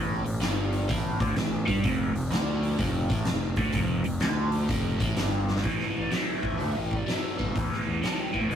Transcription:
0.00 0.23 A1 medium
0.00 0.24 A2 medium
0.25 0.41 A1 medium
0.25 0.38 A2 medium
0.25 open hi-hat medium
0.41 0.86 G1 medium
0.41 0.89 G2 loud
0.41 snare loud
0.41 open hi-hat medium
0.72 open hi-hat medium
0.89 1.18 A1 medium
0.89 1.19 A2 loud
0.89 kick loud
0.89 open hi-hat medium
1.20 1.35 D2 medium
1.20 1.36 D3 medium
1.20 kick loud
1.20 open hi-hat medium
1.35 1.65 A1 medium
1.35 1.61 A2 medium
1.35 snare medium
1.35 open hi-hat medium
1.67 1.83 G2 medium
1.67 1.83 G3 loud
1.67 kick loud
1.67 open hi-hat medium
1.83 2.13 F1 medium
1.83 2.13 F2 loud
1.83 kick loud
1.83 open hi-hat medium
2.14 2.30 F1 medium
2.14 2.28 F2 medium
2.14 open hi-hat medium
2.30 2.75 D2 medium
2.30 2.79 D3 loud
2.30 snare loud
2.30 open hi-hat medium
2.63 open hi-hat medium
2.79 3.08 F1 medium
2.79 3.09 F2 loud
2.79 kick loud
2.79 open hi-hat medium
3.10 3.25 A1 medium
3.10 3.26 A2 medium
3.10 kick loud
3.10 open hi-hat medium
3.25 3.56 F1 medium
3.25 3.51 F2 medium
3.25 snare medium
3.25 open hi-hat medium
3.56 3.72 D2 medium
3.56 3.74 D3 medium
3.56 kick loud
3.56 open hi-hat medium
3.72 4.03 F1 medium
3.72 4.04 F2 loud
3.72 kick loud
3.72 open hi-hat medium
4.04 4.21 F1 medium
4.04 4.18 F2 medium
4.04 open hi-hat medium
4.20 4.66 D2 medium
4.20 4.69 D3 loud
4.20 snare loud
4.20 open hi-hat medium
4.52 open hi-hat medium
4.69 4.98 F1 medium
4.69 5.00 F2 loud
4.69 kick loud
4.69 open hi-hat medium
5.00 5.16 A1 medium
5.00 5.16 A2 medium
5.00 kick loud
5.00 open hi-hat medium
5.17 5.62 G1 medium
5.17 5.64 G2 loud
5.17 snare medium
5.17 open hi-hat medium
5.48 snare medium
5.56 snare medium
5.63 5.77 A1 medium
5.63 6.08 A2 medium
5.63 6.09 E3 medium
5.63 kick loud
5.63 open hi-hat soft
5.79 snare soft
5.96 6.10 A1 medium
5.96 6.13 D5 medium
6.11 6.40 A2 medium
6.11 6.40 F#3 medium
6.11 6.75 E5 medium
6.11 snare medium
6.11 open hi-hat soft
6.42 6.56 A2 medium
6.42 6.57 E3 medium
6.42 kick medium
6.52 6.59 E2 medium
6.57 6.74 D2 loud
6.57 7.03 A2 medium
6.57 7.04 E3 medium
6.57 open hi-hat medium
6.76 6.96 A1 medium
6.76 6.93 G5 medium
6.91 7.11 D5 medium
6.91 kick medium
7.07 7.35 A2 medium
7.07 7.35 F#3 medium
7.07 snare medium
7.07 open hi-hat soft
7.11 7.56 E5 medium
7.38 7.46 G1 medium
7.38 7.53 A2 medium
7.38 7.54 E3 medium
7.38 kick medium
7.48 7.54 G1 medium
7.55 7.68 E2 medium
7.55 8.00 A2 medium
7.55 8.00 E3 medium
7.55 kick loud
7.55 open hi-hat soft
7.72 snare soft
7.87 8.01 E2 medium
8.02 8.31 A2 medium
8.02 8.31 F#3 medium
8.02 snare loud
8.02 open hi-hat soft
8.06 8.20 A5 medium
8.20 8.36 G5 medium
8.33 8.48 A2 medium
8.33 8.48 E3 medium
8.33 8.51 E5 medium
8.33 kick medium
8.41 8.49 A2 medium
8.49 8.55 C2 medium
8.49 8.55 A2 medium
8.49 8.55 E3 medium
8.49 8.55 D#5 medium
8.49 open hi-hat medium

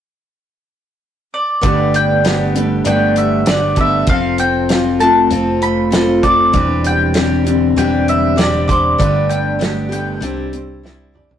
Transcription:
1.34 1.97 D5 medium
1.61 2.82 G1 medium
1.61 2.24 G2 medium
1.61 2.24 D3 medium
1.61 2.54 G3 medium
1.61 2.23 A3 medium
1.61 2.23 B3 medium
1.61 2.25 D4 medium
1.61 2.25 G4 medium
1.61 kick loud
1.61 closed hi-hat medium
1.94 2.83 D4 medium
1.94 2.86 G5 medium
1.94 closed hi-hat medium
2.24 2.55 A3 medium
2.24 2.54 B3 medium
2.24 3.78 B3 medium
2.24 2.54 D4 medium
2.24 2.54 G4 medium
2.24 snare loud
2.24 closed hi-hat medium
2.55 3.15 G3 medium
2.55 2.85 A3 soft
2.55 2.85 B3 soft
2.55 2.85 D4 soft
2.55 2.86 G4 soft
2.55 closed hi-hat medium
2.84 4.05 G1 medium
2.84 3.47 G2 medium
2.84 3.47 D3 medium
2.84 3.44 A3 medium
2.84 3.45 B3 medium
2.84 3.46 D4 medium
2.84 3.47 D4 medium
2.84 3.48 G4 medium
2.84 3.18 G5 medium
2.84 closed hi-hat medium
3.16 4.09 G3 medium
3.16 3.49 E5 medium
3.16 closed hi-hat medium
3.46 3.77 A3 medium
3.46 3.78 B3 medium
3.46 4.09 D4 medium
3.46 3.77 D4 medium
3.46 3.77 G4 medium
3.46 3.79 D5 medium
3.46 snare loud
3.46 closed hi-hat medium
3.76 4.07 A3 soft
3.76 4.09 B3 soft
3.76 4.08 D4 soft
3.76 4.09 G4 soft
3.76 4.08 A4 medium
3.76 kick medium
3.76 closed hi-hat medium
3.80 4.08 E5 medium
4.07 5.27 F1 loud
4.07 4.69 F3 medium
4.07 5.62 F3 medium
4.07 4.70 C4 medium
4.07 4.70 F4 medium
4.07 4.70 A4 medium
4.07 4.38 F5 loud
4.07 kick loud
4.07 closed hi-hat medium
4.38 5.30 C4 medium
4.38 4.97 G5 medium
4.38 closed hi-hat medium
4.69 5.01 F3 medium
4.69 5.01 C4 medium
4.69 6.23 F4 medium
4.69 5.00 F4 medium
4.69 4.98 A4 medium
4.69 snare medium
4.69 closed hi-hat medium
5.00 5.61 A3 medium
5.00 5.30 C4 soft
5.00 5.30 F4 soft
5.00 5.30 A4 medium
5.00 5.62 A5 medium
5.00 closed hi-hat medium
5.30 6.50 F1 medium
5.30 5.89 F3 medium
5.30 5.91 C4 medium
5.30 5.92 C4 medium
5.30 5.91 F4 medium
5.30 5.92 A4 medium
5.30 closed hi-hat medium
5.62 6.54 A3 medium
5.62 6.25 B5 loud
5.62 closed hi-hat medium
5.91 6.22 F3 soft
5.91 6.23 C4 medium
5.91 6.54 C4 medium
5.91 6.23 F4 medium
5.91 6.22 A4 medium
5.91 snare loud
5.91 closed hi-hat medium
6.23 6.52 C4 soft
6.23 6.53 F4 soft
6.23 6.54 A4 medium
6.23 6.54 A4 soft
6.23 6.81 D5 medium
6.23 kick medium
6.23 closed hi-hat medium
6.53 7.72 E1 loud
6.53 7.15 E3 medium
6.53 8.07 E3 medium
6.53 7.14 G3 medium
6.53 7.14 C4 medium
6.53 7.15 D4 medium
6.53 7.16 G4 medium
6.53 kick medium
6.53 closed hi-hat medium
6.84 7.78 G3 medium
6.84 7.76 G5 medium
6.84 closed hi-hat medium
7.14 7.45 G3 medium
7.14 7.45 C4 medium
7.14 7.45 D4 medium
7.14 7.43 G4 medium
7.14 9.62 G4 medium
7.14 snare medium
7.14 closed hi-hat medium
7.44 8.08 D3 medium
7.44 7.76 C4 soft
7.44 7.77 D4 soft
7.44 7.76 G4 soft
7.44 closed hi-hat medium
7.76 8.95 E1 medium
7.76 8.38 E3 medium
7.76 8.36 G3 medium
7.76 8.39 G3 medium
7.76 8.36 C4 medium
7.76 8.37 D4 medium
7.76 8.39 G4 medium
7.76 8.06 G5 medium
7.76 closed hi-hat medium
8.08 9.00 D3 medium
8.08 8.40 E5 medium
8.08 closed hi-hat medium
8.36 8.99 G3 medium
8.36 9.01 G3 medium
8.36 8.99 C4 medium
8.36 9.00 D4 medium
8.36 9.00 G4 medium
8.36 8.66 D5 medium
8.36 snare loud
8.36 closed hi-hat medium
8.68 9.00 C5 medium
8.68 9.26 D5 medium
8.68 kick medium
8.68 closed hi-hat medium
8.98 10.18 G1 medium
8.98 9.60 G2 medium
8.98 9.60 D3 medium
8.98 10.23 G3 medium
8.98 9.58 A3 medium
8.98 9.58 B3 medium
8.98 9.59 D4 medium
8.98 9.60 G4 medium
8.98 kick medium
8.98 closed hi-hat medium
9.29 10.23 D4 medium
9.29 9.87 G5 medium
9.29 closed hi-hat medium
9.59 9.91 A3 medium
9.59 9.90 B3 medium
9.59 9.88 D4 medium
9.59 9.88 G4 medium
9.59 10.23 G4 medium
9.59 snare loud
9.59 closed hi-hat medium
9.89 10.20 A3 soft
9.89 10.21 B3 soft
9.89 10.21 D4 soft
9.89 10.21 G4 soft
9.89 10.80 G5 medium
9.89 closed hi-hat medium
9.93 10.23 A3 medium
10.20 11.39 C2 medium
10.20 10.83 C3 medium
10.20 10.82 G3 medium
10.20 10.53 C4 medium
10.20 10.83 D4 medium
10.20 10.84 E4 medium
10.20 10.84 G4 medium
10.20 closed hi-hat medium
10.53 11.39 C4 medium
10.53 closed hi-hat medium
10.83 11.14 G3 medium
10.83 11.15 D4 medium
10.83 11.39 E4 medium
10.83 11.14 E4 medium
10.83 11.12 G4 medium
10.83 snare medium
11.14 11.39 D4 soft
11.14 11.39 E4 soft
11.14 11.39 G4 medium
11.14 11.39 D5 medium
11.14 mid tom medium
11.31 floor tom medium

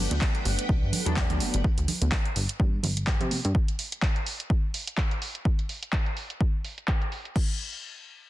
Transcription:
0.00 1.03 F#3 medium
0.00 1.04 A3 medium
0.00 1.04 B3 medium
0.00 1.04 D4 medium
0.00 1.63 B4 medium
0.00 1.63 F#5 medium
0.00 1.63 G5 medium
0.11 0.20 D2 loud
0.11 closed hi-hat medium
0.11 tambourine soft
0.11 high conga medium
0.21 kick loud
0.21 clap loud
0.34 closed hi-hat soft
0.34 tambourine soft
0.45 0.56 G1 loud
0.45 open hi-hat loud
0.45 tambourine medium
0.59 closed hi-hat medium
0.69 0.84 B1 medium
0.69 kick loud
0.69 tambourine medium
0.69 high conga medium
0.82 0.91 G2 loud
0.82 tambourine soft
0.92 open hi-hat loud
0.92 tambourine medium
0.92 low conga medium
1.06 1.25 E2 loud
1.06 1.62 F#3 medium
1.06 1.62 A3 medium
1.06 1.62 B3 medium
1.06 1.62 D4 loud
1.06 closed hi-hat medium
1.06 tambourine soft
1.16 kick loud
1.16 clap loud
1.30 1.39 D2 medium
1.30 closed hi-hat medium
1.30 tambourine soft
1.30 low conga loud
1.40 1.51 G1 soft
1.40 open hi-hat loud
1.40 tambourine medium
1.40 high conga medium
1.54 1.63 G1 loud
1.54 closed hi-hat medium
1.54 tambourine soft
1.64 kick loud
1.64 tambourine soft
1.78 1.86 D2 medium
1.78 closed hi-hat medium
1.88 open hi-hat loud
1.88 tambourine medium
1.88 low conga medium
2.01 2.10 D2 loud
2.01 closed hi-hat medium
2.01 tambourine soft
2.01 high conga medium
2.12 kick loud
2.12 clap loud
2.25 closed hi-hat soft
2.25 tambourine soft
2.36 2.47 G1 loud
2.36 open hi-hat loud
2.36 tambourine medium
2.49 closed hi-hat medium
2.49 tambourine soft
2.59 2.80 G2 medium
2.59 kick loud
2.59 tambourine soft
2.59 high conga medium
2.73 tambourine soft
2.83 3.17 G1 medium
2.83 open hi-hat loud
2.83 tambourine medium
2.83 low conga medium
2.96 closed hi-hat medium
2.96 tambourine soft
3.07 kick loud
3.07 clap loud
3.20 3.40 C3 medium
3.20 closed hi-hat medium
3.20 tambourine soft
3.20 low conga medium
3.31 open hi-hat loud
3.31 tambourine medium
3.31 high conga medium
3.45 3.53 G2 loud
3.45 closed hi-hat medium
3.45 tambourine soft
3.55 kick loud
3.68 closed hi-hat medium
3.79 open hi-hat loud
3.92 closed hi-hat medium
4.02 kick loud
4.02 clap loud
4.16 closed hi-hat soft
4.26 open hi-hat loud
4.40 closed hi-hat medium
4.50 kick loud
4.74 open hi-hat loud
4.87 closed hi-hat medium
4.98 kick loud
4.98 clap loud
5.11 closed hi-hat soft
5.22 open hi-hat loud
5.35 closed hi-hat medium
5.45 kick loud
5.59 closed hi-hat soft
5.69 open hi-hat loud
5.83 closed hi-hat medium
5.93 kick loud
5.93 clap loud
6.06 closed hi-hat soft
6.17 open hi-hat loud
6.30 closed hi-hat medium
6.41 kick loud
6.65 open hi-hat loud
6.78 closed hi-hat medium
6.88 kick loud
6.88 clap loud
7.02 closed hi-hat soft
7.12 open hi-hat loud
7.25 closed hi-hat medium
7.36 kick loud
7.36 crash medium

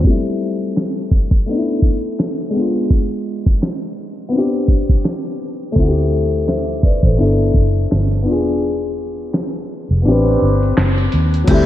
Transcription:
0.01 0.10 F#3 soft
0.01 1.44 A3 medium
0.05 1.46 G3 medium
0.05 1.46 C4 medium
0.05 kick medium
0.10 1.47 E4 medium
0.24 closed hi-hat soft
0.40 closed hi-hat medium
0.63 closed hi-hat soft
0.74 snare loud
0.74 clap medium
0.74 closed hi-hat medium
0.96 closed hi-hat soft
1.11 kick medium
1.11 closed hi-hat soft
1.31 kick medium
1.46 2.54 A3 medium
1.46 2.52 B3 medium
1.46 2.55 D4 medium
1.46 closed hi-hat medium
1.51 1.57 D#4 medium
1.58 2.60 E4 medium
1.71 closed hi-hat soft
1.82 kick medium
1.82 closed hi-hat medium
2.04 closed hi-hat soft
2.19 snare loud
2.19 clap medium
2.19 closed hi-hat medium
2.40 closed hi-hat soft
2.50 4.28 G#3 medium
2.50 4.27 B3 medium
2.50 closed hi-hat medium
2.57 4.31 D4 soft
2.57 4.32 F4 medium
2.76 closed hi-hat soft
2.90 kick loud
2.90 closed hi-hat medium
3.11 closed hi-hat soft
3.26 closed hi-hat medium
3.46 kick medium
3.46 closed hi-hat soft
3.59 snare loud
3.59 clap medium
3.59 closed hi-hat medium
3.81 closed hi-hat soft
4.00 closed hi-hat soft
4.18 closed hi-hat soft
4.29 5.71 B3 medium
4.29 5.73 C4 medium
4.34 5.74 D4 medium
4.34 closed hi-hat medium
4.38 5.76 G4 medium
4.56 closed hi-hat soft
4.67 kick medium
4.67 closed hi-hat medium
4.89 kick medium
5.05 snare loud
5.05 clap medium
5.26 closed hi-hat soft
5.40 closed hi-hat medium
5.62 closed hi-hat soft
5.72 7.14 A3 medium
5.72 7.16 C4 medium
5.72 kick loud
5.72 closed hi-hat medium
5.77 7.00 D2 medium
5.77 7.18 E4 medium
5.82 5.86 F#4 medium
5.88 7.22 G4 medium
5.96 closed hi-hat soft
6.11 closed hi-hat medium
6.34 closed hi-hat soft
6.45 6.82 C5 medium
6.45 6.81 E5 medium
6.45 snare loud
6.45 clap medium
6.45 closed hi-hat medium
6.67 closed hi-hat soft
6.83 7.04 B4 medium
6.83 7.03 D5 medium
6.83 kick medium
6.83 closed hi-hat soft
7.03 7.16 A1 medium
7.03 7.20 A4 medium
7.03 7.38 C5 medium
7.03 kick medium
7.03 closed hi-hat soft
7.17 7.50 G1 medium
7.17 8.21 B3 medium
7.17 8.24 D4 medium
7.17 8.27 E4 medium
7.17 closed hi-hat medium
7.22 8.28 A4 medium
7.42 closed hi-hat soft
7.54 7.85 F#1 medium
7.54 kick medium
7.54 closed hi-hat medium
7.77 closed hi-hat soft
7.91 8.28 G1 medium
7.91 snare loud
7.91 clap medium
7.91 closed hi-hat medium
8.12 closed hi-hat soft
8.22 9.99 B3 medium
8.22 10.01 D4 medium
8.22 closed hi-hat medium
8.28 9.64 E1 medium
8.28 10.02 F4 medium
8.28 10.04 G#4 medium
8.48 closed hi-hat soft
8.62 closed hi-hat medium
8.82 closed hi-hat soft
8.98 closed hi-hat medium
9.20 closed hi-hat soft
9.31 snare loud
9.31 clap medium
9.31 closed hi-hat medium
9.53 closed hi-hat soft
9.72 closed hi-hat soft
9.90 10.03 F1 medium
9.90 closed hi-hat soft
10.02 10.11 B3 medium
10.02 11.45 D4 medium
10.06 10.36 A1 medium
10.06 11.47 C4 medium
10.06 11.46 G4 medium
10.06 closed hi-hat medium
10.11 11.48 B4 medium
10.29 closed hi-hat soft
10.40 10.71 G1 medium
10.40 closed hi-hat medium
10.63 closed hi-hat soft
10.77 11.07 F#1 medium
10.77 snare loud
10.77 clap medium
10.77 closed hi-hat medium
10.98 closed hi-hat soft
11.12 11.43 D#2 medium
11.12 closed hi-hat medium
11.34 closed hi-hat soft
11.44 11.53 F#3 medium
11.44 11.66 A3 medium
11.44 kick loud
11.44 closed hi-hat medium
11.44 crash medium
11.48 11.66 D2 medium
11.48 11.66 G3 medium
11.48 11.66 C4 medium
11.48 11.66 G4 medium
11.54 11.66 E4 medium

